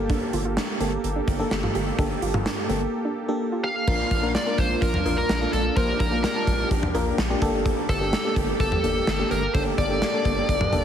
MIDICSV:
0, 0, Header, 1, 7, 480
1, 0, Start_track
1, 0, Key_signature, -2, "minor"
1, 0, Tempo, 472441
1, 99, Time_signature, 4, 2, 24, 8
1, 11018, End_track
2, 0, Start_track
2, 0, Title_t, "Lead electric guitar"
2, 0, Program_c, 0, 29
2, 3699, Note_on_c, 0, 77, 105
2, 4378, Note_off_c, 0, 77, 0
2, 4419, Note_on_c, 0, 74, 103
2, 4659, Note_on_c, 0, 72, 97
2, 4666, Note_off_c, 0, 74, 0
2, 4896, Note_off_c, 0, 72, 0
2, 4900, Note_on_c, 0, 70, 101
2, 5248, Note_off_c, 0, 70, 0
2, 5260, Note_on_c, 0, 70, 95
2, 5594, Note_off_c, 0, 70, 0
2, 5618, Note_on_c, 0, 69, 84
2, 5855, Note_off_c, 0, 69, 0
2, 5859, Note_on_c, 0, 70, 98
2, 6086, Note_off_c, 0, 70, 0
2, 6099, Note_on_c, 0, 70, 86
2, 6327, Note_off_c, 0, 70, 0
2, 6339, Note_on_c, 0, 70, 82
2, 6785, Note_off_c, 0, 70, 0
2, 8019, Note_on_c, 0, 69, 118
2, 8465, Note_off_c, 0, 69, 0
2, 8740, Note_on_c, 0, 69, 93
2, 9456, Note_off_c, 0, 69, 0
2, 9460, Note_on_c, 0, 70, 88
2, 9695, Note_off_c, 0, 70, 0
2, 9699, Note_on_c, 0, 72, 106
2, 9763, Note_off_c, 0, 72, 0
2, 9938, Note_on_c, 0, 74, 103
2, 11018, Note_off_c, 0, 74, 0
2, 11018, End_track
3, 0, Start_track
3, 0, Title_t, "Analog synth pad"
3, 0, Program_c, 1, 89
3, 0, Note_on_c, 1, 58, 84
3, 0, Note_on_c, 1, 67, 91
3, 0, Note_on_c, 1, 69, 83
3, 3897, Note_off_c, 1, 58, 0
3, 3897, Note_off_c, 1, 67, 0
3, 3897, Note_off_c, 1, 69, 0
3, 3939, Note_on_c, 1, 58, 84
3, 3939, Note_on_c, 1, 62, 80
3, 3939, Note_on_c, 1, 65, 97
3, 5839, Note_off_c, 1, 65, 0
3, 5859, Note_on_c, 1, 67, 100
3, 7502, Note_off_c, 1, 58, 0
3, 7503, Note_off_c, 1, 62, 0
3, 7539, Note_on_c, 1, 58, 76
3, 7540, Note_on_c, 1, 69, 84
3, 11018, Note_off_c, 1, 58, 0
3, 11018, Note_off_c, 1, 67, 0
3, 11018, Note_off_c, 1, 69, 0
3, 11018, End_track
4, 0, Start_track
4, 0, Title_t, "FM electric piano"
4, 0, Program_c, 2, 5
4, 0, Note_on_c, 2, 58, 97
4, 0, Note_on_c, 2, 67, 88
4, 0, Note_on_c, 2, 69, 105
4, 626, Note_off_c, 2, 58, 0
4, 626, Note_off_c, 2, 67, 0
4, 626, Note_off_c, 2, 69, 0
4, 817, Note_on_c, 2, 67, 83
4, 817, Note_on_c, 2, 69, 99
4, 818, Note_on_c, 2, 58, 89
4, 1220, Note_off_c, 2, 58, 0
4, 1220, Note_off_c, 2, 67, 0
4, 1220, Note_off_c, 2, 69, 0
4, 1417, Note_on_c, 2, 67, 86
4, 1417, Note_on_c, 2, 69, 102
4, 1418, Note_on_c, 2, 58, 89
4, 1820, Note_off_c, 2, 58, 0
4, 1820, Note_off_c, 2, 67, 0
4, 1820, Note_off_c, 2, 69, 0
4, 2018, Note_on_c, 2, 58, 88
4, 2018, Note_on_c, 2, 67, 83
4, 2018, Note_on_c, 2, 69, 98
4, 2500, Note_off_c, 2, 67, 0
4, 2500, Note_off_c, 2, 69, 0
4, 2501, Note_off_c, 2, 58, 0
4, 2737, Note_on_c, 2, 58, 89
4, 2737, Note_on_c, 2, 67, 80
4, 2737, Note_on_c, 2, 69, 93
4, 3140, Note_off_c, 2, 58, 0
4, 3140, Note_off_c, 2, 67, 0
4, 3140, Note_off_c, 2, 69, 0
4, 3337, Note_on_c, 2, 58, 93
4, 3337, Note_on_c, 2, 67, 80
4, 3337, Note_on_c, 2, 69, 98
4, 3740, Note_off_c, 2, 58, 0
4, 3740, Note_off_c, 2, 67, 0
4, 3740, Note_off_c, 2, 69, 0
4, 3937, Note_on_c, 2, 58, 79
4, 3937, Note_on_c, 2, 62, 69
4, 3937, Note_on_c, 2, 65, 73
4, 3937, Note_on_c, 2, 70, 86
4, 4179, Note_off_c, 2, 58, 0
4, 4179, Note_off_c, 2, 62, 0
4, 4179, Note_off_c, 2, 65, 0
4, 4179, Note_off_c, 2, 70, 0
4, 4297, Note_on_c, 2, 58, 78
4, 4297, Note_on_c, 2, 62, 74
4, 4297, Note_on_c, 2, 65, 70
4, 4297, Note_on_c, 2, 70, 88
4, 4458, Note_off_c, 2, 62, 0
4, 4459, Note_off_c, 2, 58, 0
4, 4459, Note_off_c, 2, 65, 0
4, 4459, Note_off_c, 2, 70, 0
4, 4538, Note_on_c, 2, 58, 80
4, 4538, Note_on_c, 2, 62, 71
4, 4538, Note_on_c, 2, 65, 71
4, 4538, Note_on_c, 2, 70, 85
4, 4940, Note_off_c, 2, 58, 0
4, 4940, Note_off_c, 2, 62, 0
4, 4940, Note_off_c, 2, 65, 0
4, 4940, Note_off_c, 2, 70, 0
4, 5138, Note_on_c, 2, 62, 70
4, 5138, Note_on_c, 2, 70, 84
4, 5139, Note_on_c, 2, 58, 76
4, 5139, Note_on_c, 2, 65, 70
4, 5379, Note_off_c, 2, 62, 0
4, 5379, Note_off_c, 2, 70, 0
4, 5380, Note_off_c, 2, 58, 0
4, 5380, Note_off_c, 2, 65, 0
4, 5498, Note_on_c, 2, 58, 79
4, 5498, Note_on_c, 2, 62, 71
4, 5498, Note_on_c, 2, 65, 73
4, 5498, Note_on_c, 2, 69, 86
4, 5739, Note_off_c, 2, 58, 0
4, 5739, Note_off_c, 2, 62, 0
4, 5739, Note_off_c, 2, 65, 0
4, 5739, Note_off_c, 2, 69, 0
4, 5859, Note_on_c, 2, 58, 79
4, 5859, Note_on_c, 2, 62, 72
4, 5859, Note_on_c, 2, 65, 71
4, 5859, Note_on_c, 2, 72, 88
4, 6100, Note_off_c, 2, 58, 0
4, 6100, Note_off_c, 2, 62, 0
4, 6100, Note_off_c, 2, 65, 0
4, 6100, Note_off_c, 2, 72, 0
4, 6219, Note_on_c, 2, 58, 79
4, 6219, Note_on_c, 2, 62, 73
4, 6219, Note_on_c, 2, 65, 72
4, 6219, Note_on_c, 2, 70, 85
4, 6379, Note_off_c, 2, 62, 0
4, 6379, Note_off_c, 2, 65, 0
4, 6379, Note_off_c, 2, 70, 0
4, 6380, Note_off_c, 2, 58, 0
4, 6458, Note_on_c, 2, 58, 79
4, 6458, Note_on_c, 2, 62, 70
4, 6458, Note_on_c, 2, 65, 71
4, 6458, Note_on_c, 2, 81, 85
4, 6860, Note_off_c, 2, 58, 0
4, 6860, Note_off_c, 2, 62, 0
4, 6860, Note_off_c, 2, 65, 0
4, 6860, Note_off_c, 2, 81, 0
4, 7058, Note_on_c, 2, 58, 92
4, 7058, Note_on_c, 2, 62, 81
4, 7058, Note_on_c, 2, 65, 82
4, 7058, Note_on_c, 2, 70, 103
4, 7299, Note_off_c, 2, 58, 0
4, 7299, Note_off_c, 2, 70, 0
4, 7300, Note_off_c, 2, 62, 0
4, 7300, Note_off_c, 2, 65, 0
4, 7419, Note_on_c, 2, 58, 93
4, 7419, Note_on_c, 2, 62, 86
4, 7419, Note_on_c, 2, 65, 83
4, 7419, Note_on_c, 2, 67, 104
4, 7527, Note_off_c, 2, 58, 0
4, 7527, Note_off_c, 2, 62, 0
4, 7527, Note_off_c, 2, 67, 0
4, 7539, Note_off_c, 2, 65, 0
4, 7539, Note_on_c, 2, 58, 104
4, 7539, Note_on_c, 2, 62, 92
4, 7539, Note_on_c, 2, 67, 93
4, 7540, Note_on_c, 2, 69, 111
4, 8019, Note_off_c, 2, 58, 0
4, 8019, Note_off_c, 2, 62, 0
4, 8019, Note_off_c, 2, 67, 0
4, 8019, Note_off_c, 2, 69, 0
4, 8139, Note_on_c, 2, 67, 74
4, 8139, Note_on_c, 2, 69, 86
4, 8140, Note_on_c, 2, 58, 82
4, 8140, Note_on_c, 2, 62, 74
4, 8299, Note_off_c, 2, 69, 0
4, 8300, Note_off_c, 2, 58, 0
4, 8300, Note_off_c, 2, 62, 0
4, 8300, Note_off_c, 2, 67, 0
4, 8378, Note_on_c, 2, 58, 80
4, 8378, Note_on_c, 2, 62, 70
4, 8378, Note_on_c, 2, 67, 72
4, 8378, Note_on_c, 2, 69, 87
4, 8780, Note_off_c, 2, 58, 0
4, 8780, Note_off_c, 2, 62, 0
4, 8780, Note_off_c, 2, 67, 0
4, 8780, Note_off_c, 2, 69, 0
4, 8979, Note_on_c, 2, 58, 79
4, 8979, Note_on_c, 2, 62, 69
4, 8979, Note_on_c, 2, 67, 69
4, 8979, Note_on_c, 2, 69, 85
4, 9220, Note_off_c, 2, 58, 0
4, 9220, Note_off_c, 2, 62, 0
4, 9220, Note_off_c, 2, 67, 0
4, 9220, Note_off_c, 2, 69, 0
4, 9339, Note_on_c, 2, 62, 71
4, 9339, Note_on_c, 2, 69, 89
4, 9340, Note_on_c, 2, 58, 78
4, 9340, Note_on_c, 2, 67, 73
4, 9580, Note_off_c, 2, 58, 0
4, 9580, Note_off_c, 2, 62, 0
4, 9580, Note_off_c, 2, 67, 0
4, 9580, Note_off_c, 2, 69, 0
4, 9699, Note_on_c, 2, 58, 76
4, 9699, Note_on_c, 2, 67, 72
4, 9699, Note_on_c, 2, 69, 84
4, 9700, Note_on_c, 2, 62, 72
4, 9940, Note_off_c, 2, 58, 0
4, 9940, Note_off_c, 2, 62, 0
4, 9940, Note_off_c, 2, 67, 0
4, 9940, Note_off_c, 2, 69, 0
4, 10058, Note_on_c, 2, 58, 80
4, 10058, Note_on_c, 2, 69, 87
4, 10059, Note_on_c, 2, 62, 72
4, 10059, Note_on_c, 2, 67, 73
4, 10219, Note_off_c, 2, 58, 0
4, 10219, Note_off_c, 2, 62, 0
4, 10219, Note_off_c, 2, 67, 0
4, 10219, Note_off_c, 2, 69, 0
4, 10298, Note_on_c, 2, 62, 71
4, 10299, Note_on_c, 2, 58, 74
4, 10299, Note_on_c, 2, 67, 72
4, 10299, Note_on_c, 2, 69, 84
4, 10701, Note_off_c, 2, 58, 0
4, 10701, Note_off_c, 2, 62, 0
4, 10701, Note_off_c, 2, 67, 0
4, 10701, Note_off_c, 2, 69, 0
4, 10898, Note_on_c, 2, 67, 85
4, 10899, Note_on_c, 2, 58, 92
4, 10899, Note_on_c, 2, 62, 82
4, 10899, Note_on_c, 2, 69, 102
4, 11018, Note_off_c, 2, 58, 0
4, 11018, Note_off_c, 2, 62, 0
4, 11018, Note_off_c, 2, 67, 0
4, 11018, Note_off_c, 2, 69, 0
4, 11018, End_track
5, 0, Start_track
5, 0, Title_t, "Synth arpeggio sound"
5, 0, Program_c, 3, 84
5, 98, Note_on_c, 3, 62, 92
5, 278, Note_off_c, 3, 62, 0
5, 338, Note_on_c, 3, 65, 81
5, 428, Note_off_c, 3, 65, 0
5, 458, Note_on_c, 3, 65, 77
5, 548, Note_off_c, 3, 65, 0
5, 578, Note_on_c, 3, 62, 87
5, 757, Note_off_c, 3, 62, 0
5, 818, Note_on_c, 3, 60, 80
5, 998, Note_off_c, 3, 60, 0
5, 1178, Note_on_c, 3, 62, 75
5, 1358, Note_off_c, 3, 62, 0
5, 1418, Note_on_c, 3, 62, 75
5, 1598, Note_off_c, 3, 62, 0
5, 1659, Note_on_c, 3, 65, 74
5, 1748, Note_off_c, 3, 65, 0
5, 1778, Note_on_c, 3, 67, 80
5, 1958, Note_off_c, 3, 67, 0
5, 2019, Note_on_c, 3, 62, 97
5, 2198, Note_off_c, 3, 62, 0
5, 2259, Note_on_c, 3, 65, 83
5, 2348, Note_off_c, 3, 65, 0
5, 2378, Note_on_c, 3, 65, 76
5, 2468, Note_off_c, 3, 65, 0
5, 2498, Note_on_c, 3, 62, 86
5, 2678, Note_off_c, 3, 62, 0
5, 2738, Note_on_c, 3, 60, 78
5, 2917, Note_off_c, 3, 60, 0
5, 3097, Note_on_c, 3, 62, 78
5, 3277, Note_off_c, 3, 62, 0
5, 3338, Note_on_c, 3, 62, 75
5, 3517, Note_off_c, 3, 62, 0
5, 3577, Note_on_c, 3, 65, 74
5, 3667, Note_off_c, 3, 65, 0
5, 3698, Note_on_c, 3, 67, 81
5, 3877, Note_off_c, 3, 67, 0
5, 11018, End_track
6, 0, Start_track
6, 0, Title_t, "Analog synth bass"
6, 0, Program_c, 4, 38
6, 0, Note_on_c, 4, 31, 99
6, 194, Note_off_c, 4, 31, 0
6, 338, Note_on_c, 4, 31, 110
6, 590, Note_off_c, 4, 31, 0
6, 817, Note_on_c, 4, 31, 102
6, 986, Note_off_c, 4, 31, 0
6, 1057, Note_on_c, 4, 31, 109
6, 1226, Note_off_c, 4, 31, 0
6, 1297, Note_on_c, 4, 31, 105
6, 1466, Note_off_c, 4, 31, 0
6, 1538, Note_on_c, 4, 31, 108
6, 1706, Note_off_c, 4, 31, 0
6, 1777, Note_on_c, 4, 31, 105
6, 1946, Note_off_c, 4, 31, 0
6, 2018, Note_on_c, 4, 31, 106
6, 2186, Note_off_c, 4, 31, 0
6, 2257, Note_on_c, 4, 31, 104
6, 2509, Note_off_c, 4, 31, 0
6, 2738, Note_on_c, 4, 31, 110
6, 2906, Note_off_c, 4, 31, 0
6, 3938, Note_on_c, 4, 34, 102
6, 4106, Note_off_c, 4, 34, 0
6, 4177, Note_on_c, 4, 34, 96
6, 4430, Note_off_c, 4, 34, 0
6, 4657, Note_on_c, 4, 34, 101
6, 4825, Note_off_c, 4, 34, 0
6, 4897, Note_on_c, 4, 34, 109
6, 5065, Note_off_c, 4, 34, 0
6, 5138, Note_on_c, 4, 34, 104
6, 5306, Note_off_c, 4, 34, 0
6, 5378, Note_on_c, 4, 34, 100
6, 5546, Note_off_c, 4, 34, 0
6, 5619, Note_on_c, 4, 34, 103
6, 5787, Note_off_c, 4, 34, 0
6, 5858, Note_on_c, 4, 34, 106
6, 6026, Note_off_c, 4, 34, 0
6, 6098, Note_on_c, 4, 34, 103
6, 6350, Note_off_c, 4, 34, 0
6, 6577, Note_on_c, 4, 34, 103
6, 6745, Note_off_c, 4, 34, 0
6, 6817, Note_on_c, 4, 34, 114
6, 6985, Note_off_c, 4, 34, 0
6, 7058, Note_on_c, 4, 34, 112
6, 7226, Note_off_c, 4, 34, 0
6, 7299, Note_on_c, 4, 34, 104
6, 7467, Note_off_c, 4, 34, 0
6, 7537, Note_on_c, 4, 31, 105
6, 7874, Note_off_c, 4, 31, 0
6, 8019, Note_on_c, 4, 31, 112
6, 8270, Note_off_c, 4, 31, 0
6, 8497, Note_on_c, 4, 31, 107
6, 8666, Note_off_c, 4, 31, 0
6, 8737, Note_on_c, 4, 31, 109
6, 8906, Note_off_c, 4, 31, 0
6, 8979, Note_on_c, 4, 31, 107
6, 9147, Note_off_c, 4, 31, 0
6, 9219, Note_on_c, 4, 31, 105
6, 9387, Note_off_c, 4, 31, 0
6, 9459, Note_on_c, 4, 31, 102
6, 9627, Note_off_c, 4, 31, 0
6, 9699, Note_on_c, 4, 31, 106
6, 9867, Note_off_c, 4, 31, 0
6, 9938, Note_on_c, 4, 31, 107
6, 10190, Note_off_c, 4, 31, 0
6, 10417, Note_on_c, 4, 31, 112
6, 10585, Note_off_c, 4, 31, 0
6, 10657, Note_on_c, 4, 31, 111
6, 10825, Note_off_c, 4, 31, 0
6, 10898, Note_on_c, 4, 31, 103
6, 11018, Note_off_c, 4, 31, 0
6, 11018, End_track
7, 0, Start_track
7, 0, Title_t, "Drums"
7, 98, Note_on_c, 9, 36, 110
7, 98, Note_on_c, 9, 42, 71
7, 199, Note_off_c, 9, 36, 0
7, 200, Note_off_c, 9, 42, 0
7, 338, Note_on_c, 9, 42, 66
7, 439, Note_off_c, 9, 42, 0
7, 578, Note_on_c, 9, 38, 112
7, 581, Note_on_c, 9, 42, 78
7, 680, Note_off_c, 9, 38, 0
7, 682, Note_off_c, 9, 42, 0
7, 818, Note_on_c, 9, 42, 77
7, 919, Note_off_c, 9, 42, 0
7, 1058, Note_on_c, 9, 42, 82
7, 1160, Note_off_c, 9, 42, 0
7, 1297, Note_on_c, 9, 36, 96
7, 1298, Note_on_c, 9, 42, 80
7, 1399, Note_off_c, 9, 36, 0
7, 1400, Note_off_c, 9, 42, 0
7, 1537, Note_on_c, 9, 38, 116
7, 1539, Note_on_c, 9, 42, 70
7, 1639, Note_off_c, 9, 38, 0
7, 1641, Note_off_c, 9, 42, 0
7, 1658, Note_on_c, 9, 47, 58
7, 1760, Note_off_c, 9, 47, 0
7, 1778, Note_on_c, 9, 42, 73
7, 1879, Note_off_c, 9, 42, 0
7, 2018, Note_on_c, 9, 36, 111
7, 2018, Note_on_c, 9, 42, 73
7, 2119, Note_off_c, 9, 36, 0
7, 2119, Note_off_c, 9, 42, 0
7, 2257, Note_on_c, 9, 42, 66
7, 2359, Note_off_c, 9, 42, 0
7, 2379, Note_on_c, 9, 47, 92
7, 2480, Note_off_c, 9, 47, 0
7, 2498, Note_on_c, 9, 38, 110
7, 2500, Note_on_c, 9, 42, 77
7, 2599, Note_off_c, 9, 38, 0
7, 2602, Note_off_c, 9, 42, 0
7, 2738, Note_on_c, 9, 42, 75
7, 2840, Note_off_c, 9, 42, 0
7, 3938, Note_on_c, 9, 36, 116
7, 3938, Note_on_c, 9, 49, 103
7, 4040, Note_off_c, 9, 36, 0
7, 4040, Note_off_c, 9, 49, 0
7, 4177, Note_on_c, 9, 36, 93
7, 4178, Note_on_c, 9, 42, 72
7, 4279, Note_off_c, 9, 36, 0
7, 4279, Note_off_c, 9, 42, 0
7, 4418, Note_on_c, 9, 38, 114
7, 4421, Note_on_c, 9, 42, 77
7, 4520, Note_off_c, 9, 38, 0
7, 4523, Note_off_c, 9, 42, 0
7, 4657, Note_on_c, 9, 36, 86
7, 4658, Note_on_c, 9, 42, 74
7, 4758, Note_off_c, 9, 36, 0
7, 4760, Note_off_c, 9, 42, 0
7, 4897, Note_on_c, 9, 36, 100
7, 4899, Note_on_c, 9, 42, 84
7, 4998, Note_off_c, 9, 36, 0
7, 5000, Note_off_c, 9, 42, 0
7, 5018, Note_on_c, 9, 45, 93
7, 5119, Note_off_c, 9, 45, 0
7, 5137, Note_on_c, 9, 56, 68
7, 5139, Note_on_c, 9, 42, 80
7, 5239, Note_off_c, 9, 56, 0
7, 5241, Note_off_c, 9, 42, 0
7, 5379, Note_on_c, 9, 38, 115
7, 5381, Note_on_c, 9, 42, 76
7, 5481, Note_off_c, 9, 38, 0
7, 5482, Note_off_c, 9, 42, 0
7, 5620, Note_on_c, 9, 42, 78
7, 5721, Note_off_c, 9, 42, 0
7, 5858, Note_on_c, 9, 36, 115
7, 5859, Note_on_c, 9, 42, 74
7, 5960, Note_off_c, 9, 36, 0
7, 5961, Note_off_c, 9, 42, 0
7, 6098, Note_on_c, 9, 36, 96
7, 6098, Note_on_c, 9, 42, 70
7, 6098, Note_on_c, 9, 56, 70
7, 6199, Note_off_c, 9, 36, 0
7, 6200, Note_off_c, 9, 42, 0
7, 6200, Note_off_c, 9, 56, 0
7, 6339, Note_on_c, 9, 38, 111
7, 6342, Note_on_c, 9, 42, 78
7, 6440, Note_off_c, 9, 38, 0
7, 6443, Note_off_c, 9, 42, 0
7, 6577, Note_on_c, 9, 36, 85
7, 6579, Note_on_c, 9, 42, 80
7, 6679, Note_off_c, 9, 36, 0
7, 6680, Note_off_c, 9, 42, 0
7, 6817, Note_on_c, 9, 36, 98
7, 6819, Note_on_c, 9, 42, 86
7, 6919, Note_off_c, 9, 36, 0
7, 6921, Note_off_c, 9, 42, 0
7, 6938, Note_on_c, 9, 45, 97
7, 7040, Note_off_c, 9, 45, 0
7, 7058, Note_on_c, 9, 56, 70
7, 7060, Note_on_c, 9, 42, 83
7, 7159, Note_off_c, 9, 56, 0
7, 7161, Note_off_c, 9, 42, 0
7, 7298, Note_on_c, 9, 38, 117
7, 7300, Note_on_c, 9, 42, 74
7, 7400, Note_off_c, 9, 38, 0
7, 7402, Note_off_c, 9, 42, 0
7, 7537, Note_on_c, 9, 36, 96
7, 7538, Note_on_c, 9, 56, 68
7, 7540, Note_on_c, 9, 42, 79
7, 7639, Note_off_c, 9, 36, 0
7, 7640, Note_off_c, 9, 56, 0
7, 7641, Note_off_c, 9, 42, 0
7, 7779, Note_on_c, 9, 36, 115
7, 7780, Note_on_c, 9, 42, 75
7, 7881, Note_off_c, 9, 36, 0
7, 7881, Note_off_c, 9, 42, 0
7, 8018, Note_on_c, 9, 36, 95
7, 8019, Note_on_c, 9, 42, 71
7, 8019, Note_on_c, 9, 56, 72
7, 8120, Note_off_c, 9, 36, 0
7, 8120, Note_off_c, 9, 56, 0
7, 8121, Note_off_c, 9, 42, 0
7, 8260, Note_on_c, 9, 38, 117
7, 8263, Note_on_c, 9, 42, 77
7, 8361, Note_off_c, 9, 38, 0
7, 8364, Note_off_c, 9, 42, 0
7, 8498, Note_on_c, 9, 36, 89
7, 8499, Note_on_c, 9, 42, 78
7, 8499, Note_on_c, 9, 56, 61
7, 8599, Note_off_c, 9, 36, 0
7, 8600, Note_off_c, 9, 56, 0
7, 8601, Note_off_c, 9, 42, 0
7, 8737, Note_on_c, 9, 36, 99
7, 8740, Note_on_c, 9, 42, 83
7, 8839, Note_off_c, 9, 36, 0
7, 8842, Note_off_c, 9, 42, 0
7, 8859, Note_on_c, 9, 45, 92
7, 8961, Note_off_c, 9, 45, 0
7, 8981, Note_on_c, 9, 42, 81
7, 9082, Note_off_c, 9, 42, 0
7, 9219, Note_on_c, 9, 38, 118
7, 9221, Note_on_c, 9, 42, 76
7, 9321, Note_off_c, 9, 38, 0
7, 9323, Note_off_c, 9, 42, 0
7, 9459, Note_on_c, 9, 56, 70
7, 9460, Note_on_c, 9, 42, 76
7, 9560, Note_off_c, 9, 56, 0
7, 9562, Note_off_c, 9, 42, 0
7, 9699, Note_on_c, 9, 36, 120
7, 9700, Note_on_c, 9, 42, 73
7, 9801, Note_off_c, 9, 36, 0
7, 9801, Note_off_c, 9, 42, 0
7, 9938, Note_on_c, 9, 36, 96
7, 9939, Note_on_c, 9, 42, 70
7, 10040, Note_off_c, 9, 36, 0
7, 10041, Note_off_c, 9, 42, 0
7, 10180, Note_on_c, 9, 38, 110
7, 10182, Note_on_c, 9, 42, 78
7, 10281, Note_off_c, 9, 38, 0
7, 10284, Note_off_c, 9, 42, 0
7, 10417, Note_on_c, 9, 36, 86
7, 10418, Note_on_c, 9, 56, 65
7, 10419, Note_on_c, 9, 42, 76
7, 10519, Note_off_c, 9, 36, 0
7, 10520, Note_off_c, 9, 56, 0
7, 10521, Note_off_c, 9, 42, 0
7, 10657, Note_on_c, 9, 36, 97
7, 10659, Note_on_c, 9, 42, 85
7, 10758, Note_off_c, 9, 36, 0
7, 10761, Note_off_c, 9, 42, 0
7, 10778, Note_on_c, 9, 45, 94
7, 10778, Note_on_c, 9, 47, 92
7, 10880, Note_off_c, 9, 45, 0
7, 10880, Note_off_c, 9, 47, 0
7, 10897, Note_on_c, 9, 45, 97
7, 10900, Note_on_c, 9, 42, 80
7, 10999, Note_off_c, 9, 45, 0
7, 11001, Note_off_c, 9, 42, 0
7, 11018, End_track
0, 0, End_of_file